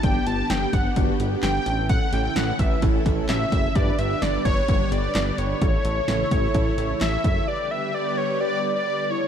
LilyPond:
<<
  \new Staff \with { instrumentName = "Analog synth lead" } { \time 4/4 \key g \lydian \tempo 4 = 129 g''8 a''8 g''8 fis''8 r4 g''4 | fis''8 g''8 fis''8 e''8 r4 e''4 | d''8 e''8 d''8 cis''4 d''4 cis''8~ | cis''2. e''8 e''8 |
d''8 e''8 d''8 cis''8 d''8. d''8. cis''8 | }
  \new Staff \with { instrumentName = "Analog polysynth" } { \time 4/4 \key g \lydian <b d' g'>8 <b d' g'>8 <b d' g'>8 <b d' g'>8 <b d' fis'>8 <b d' g'>8 <b d' g'>8 <cis' e' a'>8~ | <cis' e' a'>8 <cis' e' a'>8 <cis' e' a'>8 <cis' e' b'>8 <cis' e' a'>8 <cis' e' a'>8 <cis' e' fis'>8 <cis' e' a'>8 | <d' g' b'>8 <d' g' b'>8 <d' g' b'>8 <d' g' b'>8 <d' g' cis''>8 <d' g' b'>8 <d' g' b'>8 <d' g' b'>8 | <e' a' cis''>8 <e' a' cis''>8 <e' a' cis''>8 <e' a' cis''>8 <e' a' cis''>8 <e' a' cis''>8 <e' a' cis''>8 <e' a' cis''>8 |
<g' b' d''>8 <g' b' e''>8 <g' b' d''>8 <g' b' d''>8 <g' b' d''>8 <g' b' d''>8 <g' b' d''>8 <e' a' cis''>8 | }
  \new Staff \with { instrumentName = "String machine" } { \clef bass \time 4/4 \key g \lydian <d g b g'>2.~ <d g b g'>8 <cis e a e'>8~ | <cis e a e'>1 | <d g b g'>1 | <cis e a e'>1 |
<d g b g'>2.~ <d g b g'>8 <cis e a e'>8 | }
  \new Staff \with { instrumentName = "Analog synth bass" } { \clef bass \time 4/4 \key g \lydian g,,8 g,,8 g,,8 g,,8 g,,8 g,,8 g,,8 a,,8~ | a,,8 a,,8 a,,8 a,,8 a,,8 a,,8 a,,8 fis,,8 | g,,8 g,,8 g,,8 g,,8 g,,8 g,,8 g,,8 g,,8 | a,,8 a,,8 a,,8 a,,8 a,,8 a,,8 a,,8 fis,,8 |
r1 | }
  \new DrumStaff \with { instrumentName = "Drums" } \drummode { \time 4/4 <hh bd>8 hh8 <hh sn>8 <hh bd>8 <hh bd>8 hh8 <hc hh sn>8 hh8 | <hh bd>8 hh8 <hh sn>8 <hh bd>8 <hh bd>8 <hh bd>8 <hc hh sn>8 <hh bd>8 | <hh bd>8 hh8 <hh sn>8 <hh bd>8 <hh bd>8 hh8 <hc hh sn>8 hh8 | <hh bd>8 hh8 <hh sn>8 <hh bd>8 <hh bd>8 hh8 <hc hh sn>8 <hh bd>8 |
r4 r4 r4 r4 | }
>>